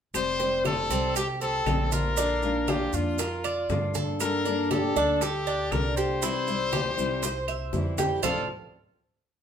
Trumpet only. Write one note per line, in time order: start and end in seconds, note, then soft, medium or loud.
0.16 0.62 C5 loud
0.66 1.13 A4 medium
1.17 1.28 G4 medium
1.42 1.89 A4 loud
1.93 2.71 A#4 loud
2.70 2.96 G4 medium
2.94 3.95 F4 medium
4.21 4.68 A#4 loud
4.71 5.23 A4 medium
5.22 5.73 G4 medium
5.72 5.96 A#4 loud
5.97 7.94 C5 loud
8.24 8.47 A4 medium